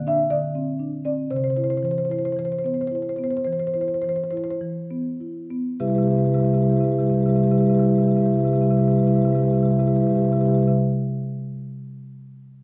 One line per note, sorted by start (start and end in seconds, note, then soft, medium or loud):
0.00 0.21 D3 soft
0.07 0.45 D4 soft
0.07 0.31 E5 medium
0.30 0.70 D3 soft
0.30 1.02 D5 medium
0.55 0.95 C4 soft
0.79 1.20 D4 soft
1.05 1.30 C4 soft
1.05 1.31 D5 medium
1.31 3.43 C3 soft
1.31 1.36 C5 medium
1.36 1.44 C5 soft
1.44 1.50 C5 soft
1.50 1.56 C5 soft
1.56 1.99 E4 soft
1.56 1.64 C5 soft
1.64 1.70 C5 soft
1.70 1.77 C5 medium
1.77 1.85 C5 soft
1.83 2.25 E3 soft
1.83 1.91 C5 soft
1.91 1.98 C5 soft
1.98 2.05 C5 soft
2.05 2.12 C5 soft
2.10 2.53 E4 soft
2.10 2.19 C5 soft
2.19 2.25 C5 soft
2.25 2.32 C5 medium
2.32 2.39 C5 soft
2.37 2.80 E3 soft
2.37 2.45 C5 medium
2.45 2.52 C5 soft
2.52 2.59 C5 soft
2.59 2.66 C5 soft
2.64 3.08 B3 soft
2.64 2.74 C5 soft
2.74 2.81 C5 soft
2.81 2.87 C5 medium
2.87 3.36 E4 soft
2.87 2.95 C5 soft
2.95 3.02 C5 soft
3.02 3.09 C5 soft
3.09 3.16 C5 soft
3.16 3.63 B3 soft
3.16 3.24 C5 soft
3.24 3.30 C5 medium
3.30 3.37 C5 soft
3.37 3.44 C5 medium
3.44 3.92 E3 soft
3.44 3.53 C5 soft
3.53 3.60 C5 soft
3.60 3.67 C5 soft
3.67 3.74 C5 soft
3.74 4.20 E4 soft
3.74 3.81 C5 soft
3.81 3.88 C5 medium
3.88 3.94 C5 soft
3.94 4.02 C5 soft
4.02 4.50 E3 soft
4.02 4.09 C5 soft
4.09 4.16 C5 medium
4.16 4.24 C5 soft
4.24 4.31 C5 soft
4.31 4.78 E4 soft
4.31 4.37 C5 soft
4.37 4.44 C5 soft
4.44 4.51 C5 soft
4.51 4.56 C5 medium
4.61 5.08 E3 soft
4.91 5.38 B3 soft
5.20 5.68 E4 soft
5.51 5.80 B3 soft
5.80 5.90 C3 soft
5.80 5.88 G3 soft
5.80 5.88 E4 soft
5.80 5.87 G4 soft
5.80 5.87 B4 soft
5.80 5.88 E5 soft
5.87 5.98 C3 soft
5.87 5.98 G3 soft
5.87 5.96 E4 soft
5.87 5.95 G4 soft
5.87 5.95 B4 soft
5.87 5.96 E5 soft
5.95 6.07 C3 soft
5.95 6.08 G3 soft
5.95 6.05 E4 soft
5.95 6.03 G4 soft
5.95 6.02 B4 soft
5.95 6.04 E5 soft
6.02 6.14 E4 soft
6.02 6.10 G4 soft
6.02 6.11 B4 soft
6.02 6.11 E5 soft
6.07 6.16 C3 soft
6.07 6.18 G3 soft
6.07 6.18 G4 soft
6.07 6.18 B4 soft
6.07 6.18 E5 soft
6.14 6.25 C3 soft
6.14 6.25 G3 soft
6.14 6.22 E4 soft
6.18 6.29 E4 soft
6.18 6.26 G4 soft
6.18 6.25 B4 soft
6.18 6.26 E5 soft
6.25 6.34 C3 soft
6.25 6.34 G3 soft
6.25 6.34 G4 soft
6.25 6.31 B4 soft
6.25 6.34 E5 soft
6.29 6.38 E4 soft
6.29 6.39 B4 soft
6.34 6.45 C3 soft
6.34 6.45 G3 soft
6.34 6.45 E4 soft
6.34 6.40 G4 soft
6.34 6.42 E5 soft
6.39 6.47 G4 soft
6.39 6.46 B4 soft
6.39 6.50 E5 soft
6.45 6.54 C3 soft
6.45 6.55 G3 soft
6.45 6.53 E4 soft
6.45 6.54 G4 soft
6.45 6.54 B4 soft
6.50 6.60 E4 soft
6.50 6.57 E5 soft
6.54 6.63 C3 soft
6.54 6.65 G3 soft
6.54 6.62 G4 soft
6.54 6.61 B4 soft
6.54 6.65 E5 soft
6.60 6.72 C3 soft
6.60 6.69 E4 soft
6.60 6.70 G4 soft
6.60 6.69 B4 soft
6.65 6.74 G3 soft
6.65 6.72 E5 soft
6.69 6.80 C3 soft
6.69 6.77 E4 soft
6.69 6.77 G4 soft
6.69 6.76 B4 soft
6.69 6.80 E5 soft
6.74 6.83 G3 soft
6.74 6.86 E4 soft
6.74 6.84 G4 soft
6.74 6.84 B4 soft
6.80 6.89 C3 soft
6.80 6.92 G3 soft
6.80 6.87 E5 soft
6.84 6.94 E4 soft
6.84 6.92 G4 soft
6.84 6.91 B4 soft
6.84 6.95 E5 soft
6.89 6.99 C3 soft
6.89 7.01 G3 soft
6.89 7.00 G4 soft
6.89 6.99 B4 soft
6.94 7.02 E4 soft
6.94 7.03 E5 soft
6.99 7.10 C3 soft
6.99 7.10 G3 soft
6.99 7.10 E4 soft
6.99 7.07 G4 soft
6.99 7.06 B4 soft
7.03 7.14 G4 soft
7.03 7.14 B4 soft
7.03 7.11 E5 soft
7.10 7.18 C3 soft
7.10 7.20 G3 soft
7.10 7.18 E4 soft
7.10 7.20 B4 soft
7.10 7.19 E5 soft
7.14 7.26 C3 soft
7.14 7.27 E4 soft
7.14 7.22 G4 soft
7.19 7.29 G3 soft
7.19 7.30 G4 soft
7.19 7.28 B4 soft
7.19 7.26 E5 soft
7.26 7.35 C3 soft
7.26 7.37 G3 soft
7.26 7.35 E4 soft
7.26 7.35 B4 soft
7.26 7.33 E5 soft
7.30 7.37 G4 soft
7.30 7.39 E5 soft
7.35 7.44 C3 soft
7.35 7.47 G3 soft
7.35 7.43 E4 soft
7.35 7.43 G4 soft
7.35 7.44 B4 soft
7.39 7.51 E4 soft
7.39 7.50 G4 soft
7.39 7.47 E5 soft
7.44 7.52 C3 soft
7.44 7.56 G3 soft
7.44 7.53 B4 soft
7.44 7.54 E5 soft
7.50 7.60 C3 soft
7.50 7.59 E4 soft
7.50 7.58 G4 soft
7.50 7.60 B4 soft
7.50 7.61 E5 soft
7.56 7.65 G3 soft
7.56 7.67 E4 soft
7.56 7.66 G4 soft
7.60 7.70 C3 soft
7.60 7.67 B4 soft
7.60 7.69 E5 soft
7.65 7.75 G3 soft
7.65 7.75 E4 soft
7.65 7.74 G4 soft
7.65 7.74 B4 soft
7.69 7.80 C3 soft
7.69 7.78 E5 soft
7.74 7.84 G3 soft
7.74 7.83 E4 soft
7.74 7.82 G4 soft
7.74 7.81 B4 soft
7.74 7.84 E5 soft
7.80 7.89 C3 soft
7.80 7.90 E4 soft
7.80 7.88 G4 soft
7.80 7.89 B4 soft
7.84 7.94 G3 soft
7.84 7.92 E5 soft
7.88 7.98 C3 soft
7.88 7.99 E4 soft
7.88 7.96 G4 soft
7.88 7.95 B4 soft
7.88 8.00 E5 soft
7.94 8.02 G3 soft
7.94 8.04 G4 soft
7.94 8.03 B4 soft
7.98 8.08 C3 soft
7.98 8.11 G3 soft
7.98 8.07 E4 soft
7.98 8.07 E5 soft
8.03 8.14 E4 soft
8.03 8.11 G4 soft
8.03 8.10 B4 soft
8.07 8.17 C3 soft
8.07 8.20 G3 soft
8.07 8.18 G4 soft
8.07 8.16 B4 soft
8.07 8.15 E5 soft
8.14 8.26 C3 soft
8.14 8.23 E4 soft
8.14 8.25 G4 soft
8.14 8.22 B4 soft
8.14 8.23 E5 soft
8.20 8.31 G3 soft
8.20 8.31 E4 soft
8.20 8.29 B4 soft
8.20 8.30 E5 soft
8.25 8.36 C3 soft
8.25 8.33 G4 soft
8.29 8.39 G3 soft
8.29 8.38 E4 soft
8.29 8.37 B4 soft
8.29 8.38 E5 soft
8.33 8.45 C3 soft
8.33 8.40 G4 soft
8.33 8.43 B4 soft
8.38 8.48 G3 soft
8.38 8.47 E4 soft
8.38 8.47 G4 soft
8.38 8.45 E5 soft
8.43 8.53 C3 soft
8.43 8.55 E4 soft
8.43 8.50 B4 soft
8.43 8.52 E5 soft
8.47 8.57 G3 soft
8.47 8.56 G4 soft
8.47 8.57 B4 soft
8.52 8.61 C3 soft
8.52 8.64 E4 soft
8.52 8.63 G4 soft
8.52 8.61 E5 soft
8.57 8.67 G3 soft
8.57 8.64 B4 soft
8.57 8.69 E5 soft
8.61 8.70 C3 soft
8.61 8.73 E4 soft
8.61 8.70 G4 soft
8.61 8.72 B4 soft
8.67 8.79 C3 soft
8.67 8.77 G3 soft
8.67 8.77 G4 soft
8.67 8.77 E5 soft
8.72 8.81 E4 soft
8.72 8.80 B4 soft
8.77 8.88 C3 soft
8.77 8.86 G3 soft
8.77 8.84 G4 soft
8.77 8.88 B4 soft
8.77 8.84 E5 soft
8.81 8.89 E4 soft
8.81 8.91 G4 soft
8.81 8.92 E5 soft
8.86 8.98 C3 soft
8.86 8.95 G3 soft
8.86 8.98 E4 soft
8.86 8.95 B4 soft
8.91 8.99 G4 soft
8.91 9.03 B4 soft
8.91 9.00 E5 soft
8.95 9.07 C3 soft
8.95 9.04 G3 soft
8.95 9.06 E4 soft
8.95 9.07 G4 soft
9.00 9.10 B4 soft
9.00 9.09 E5 soft
9.04 9.16 C3 soft
9.04 9.14 G3 soft
9.04 9.14 E4 soft
9.04 9.14 G4 soft
9.09 9.18 B4 soft
9.09 9.16 E5 soft
9.14 9.25 C3 soft
9.14 9.23 G3 soft
9.14 9.22 E4 soft
9.14 9.21 G4 soft
9.14 9.25 B4 soft
9.14 9.23 E5 soft
9.21 9.35 C3 soft
9.21 9.32 G3 soft
9.21 9.30 E4 soft
9.21 9.29 G4 soft
9.21 9.32 B4 soft
9.21 9.30 E5 soft
9.29 9.41 G3 soft
9.29 9.38 E4 soft
9.29 9.36 G4 soft
9.29 9.39 B4 soft
9.29 9.38 E5 soft
9.35 9.44 C3 soft
9.35 9.46 E4 soft
9.35 9.42 G4 soft
9.35 9.46 E5 soft
9.39 9.50 G3 soft
9.39 9.50 G4 soft
9.39 9.47 B4 soft
9.44 9.53 C3 soft
9.44 9.54 E4 soft
9.44 9.55 B4 soft
9.44 9.54 E5 soft
9.50 9.63 C3 soft
9.50 9.59 G3 soft
9.50 9.58 G4 soft
9.54 9.61 E4 soft
9.54 9.63 B4 soft
9.54 9.62 E5 soft
9.58 9.68 G3 soft
9.58 9.69 E4 soft
9.58 9.65 G4 soft
9.62 9.71 C3 soft
9.62 9.72 G4 soft
9.62 9.71 B4 soft
9.62 9.71 E5 soft
9.68 9.79 C3 soft
9.68 9.76 G3 soft
9.68 9.78 E4 soft
9.68 9.79 B4 soft
9.68 9.78 E5 soft
9.72 9.85 G3 soft
9.72 9.80 G4 soft
9.78 9.87 C3 soft
9.78 9.86 E4 soft
9.78 9.87 G4 soft
9.78 9.87 B4 soft
9.78 9.86 E5 soft
9.85 9.97 C3 soft
9.85 9.93 G3 soft
9.85 9.94 E4 soft
9.85 9.95 G4 soft
9.85 9.95 B4 soft
9.85 9.94 E5 soft
9.93 10.00 G3 soft
9.93 10.02 E4 soft
9.93 10.03 G4 soft
9.93 10.02 B4 soft
9.93 10.01 E5 soft
9.97 10.07 C3 soft
9.97 10.10 G3 soft
9.97 10.08 E5 soft
10.02 10.10 E4 soft
10.02 10.10 G4 soft
10.02 10.09 B4 soft
10.07 10.15 C3 soft
10.07 10.19 G3 soft
10.07 10.19 E4 soft
10.07 10.17 G4 soft
10.07 10.16 B4 soft
10.07 10.15 E5 soft
10.15 10.24 C3 soft
10.15 10.25 G4 soft
10.15 10.24 B4 soft
10.15 10.22 E5 soft
10.19 10.27 G3 soft
10.19 10.28 E4 soft
10.19 10.29 E5 soft
10.24 10.33 C3 soft
10.24 10.36 G3 soft
10.24 10.33 G4 soft
10.24 10.31 B4 soft
10.28 10.36 E4 soft
10.28 10.39 B4 soft
10.28 10.37 E5 soft
10.33 10.41 C3 soft
10.33 10.46 G3 soft
10.33 10.45 E4 soft
10.33 10.41 G4 soft
10.37 10.46 B4 soft
10.37 10.44 E5 soft
10.41 10.49 C3 soft
10.41 10.53 E4 soft
10.41 10.47 G4 soft
10.41 10.52 E5 soft
10.46 10.58 C3 soft
10.46 10.54 G3 soft
10.46 10.55 G4 soft
10.46 10.53 B4 soft
10.52 10.64 G3 soft
10.52 10.62 E4 soft
10.52 10.63 G4 soft
10.52 10.61 B4 soft
10.52 10.60 E5 soft
10.58 10.68 C3 soft
10.58 10.74 E4 soft
10.58 10.68 B4 soft
10.58 10.68 E5 soft
10.63 10.74 G3 soft
10.63 10.73 G4 soft
10.68 10.73 C3 soft
10.68 10.73 B4 soft
10.68 10.74 E5 soft